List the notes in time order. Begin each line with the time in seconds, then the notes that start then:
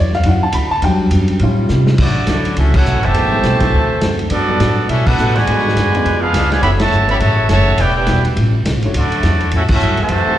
Already playing: E2 D3 F#3
0.00 C#4 E4 D5
0.13 F5, snare
0.23 F#2 D3 F#3 C#4 E4 F#5, kick, ride
0.28 E4
0.43 A5
0.52 D2 D3 F#3 C#4 E4 B5, kick, hi-hat pedal, ride
0.71 A5
0.82 E2 E3 F#3 G3 B3 D4 G4 G5, kick, ride
1.11 F#2 E3 B3 D4, kick, hi-hat pedal, ride
1.16 G4
1.28 ride
1.39 A2 G3 C#4 F4, kick, ride
1.44 F4
1.69 A2 C3 G3 C#4 F4, snare, hi-hat pedal
1.87 snare
1.98 A2 D3 F#3 A3 C#4 D4 E4 F#4 D5, kick, crash
2.02 E4
2.27 D2 D3 F#3 C#4 D4 E4 A4, kick, snare, hi-hat pedal, ride
2.45 ride
2.56 C#2 D3 F#3 A3 C#4 E4 F#4 A4 E5, kick, ride
2.72 A3 C#4 E4 F#4 A4 C#5 F#5, kick, crash
2.86 B1 D3 F#3 C#4 E4, hi-hat pedal
2.96 A1
3.01 C3 E3 A3 G4 C5 E5 A5, ride
3.05 F#1
3.14 A1 F#3 A3 A#3 B3 C4 D#4 G4 G#4 B4, kick, ride
3.31 G3 B3 C4 E4 A4
3.43 B1 A3 C4 G4 B4, kick, snare, hi-hat pedal, ride
3.60 F#3 C4 D4 E4 A4, kick, ride
3.72 D2 D3 C4 F#4 A4, kick
4.01 F#2 D3 C4 F#4 A4, kick, snare, hi-hat pedal, ride
4.19 ride
4.30 G2 F#3 G3 B3 D4 F#4 A4 D5, kick, ride
4.34 A4
4.48 G3 B3 D4 F#4 A4
4.60 A2 G3 B3 F#4 A4, kick, snare, hi-hat pedal, ride
4.89 B2 G3 B3 C#4 E4 F#4 A4 E5, kick, ride
5.05 B3 D4 F#4 A4 B4 F#5, kick, crash
5.18 A2 G3 B3 D4 F#4 A4, hi-hat pedal
5.28 snare
5.35 B2 D3 G#3 F#4 B4 D5 G#5, snare, ride
5.47 G#2 F#3 G#3 B3 D4 F#4 G#4, kick, ride
5.58 snare
5.68 snare
5.76 F#2 G#2 F#3 B3 D4, kick, snare, hi-hat pedal, ride
5.94 B3 C#4 D4 F4 B4, ride
6.04 F2 C#3 F3 B3 D4, kick, ride
6.20 G#3 B3 D4 F4 G#4 B4 F5
6.33 C#2 C#3 F3 B3 D4, kick, snare, hi-hat pedal, ride
6.50 B2 F3 G#3 F4 B4 D5 G#5, snare, ride
6.61 F#1 F#2 E3 A3 B3 C#4 E4 F#4 G4 A4 C#5 E5 B5, kick, ride
6.78 C#3 E3 A3 F#4 C#5 E5 A5, snare, ride
6.91 G1 F#2 E3 A3 C#4, hi-hat pedal
7.08 A3 B3 C#4 E4 F#4 G4 B4 C#5 E5 B5, ride
7.19 A1 F#2 C#3 E3 A3 C#4 F#4 C#5 E5 A5, kick, ride
7.48 F#1 F#2 C#3 E3 A3 C#4 F#4 C#5 E5 A5, kick, snare, hi-hat pedal, ride
7.77 E1 E3 B3 D4 E4 G4 B4 D5 G5, kick, ride
7.95 B3 D4 E4 G4 B4 D5 G5
8.07 B1 E3 G3 B3 D4 E4 F#4 G4 B4, kick, snare, hi-hat pedal, ride
8.25 ride
8.36 A1 A2 G3 C#4 F4, kick, ride
8.65 C#2 A2 G3 C#4 F4, kick, snare, hi-hat pedal, ride
8.76 A1
8.82 G1 A3 D4 E4 F#4 C#5, ride
8.94 D2 D3 F#3 A3 C#4 D4 E4 F#4 D5, kick, ride
9.12 ride
9.23 E2 D3 F#3 C#4 E4, kick, snare, hi-hat pedal, ride
9.40 ride
9.51 A2 D3 F#3 A3 C#4 E4 F#4 A4 E5, kick, ride
9.55 E4
9.68 A3 C#4 E4 F#4 E5, kick, crash
9.73 A4
9.80 G2 D3 F#3 C#4 E4, hi-hat pedal
9.97 C3 E3 A3, muted upright bass stroke, ride
10.01 F#4 C5 E5 A5
10.09 F#2 F#3 C4 E4, kick, ride
10.13 A4
10.27 A3 C4 E4 F#4 C5, muted upright bass stroke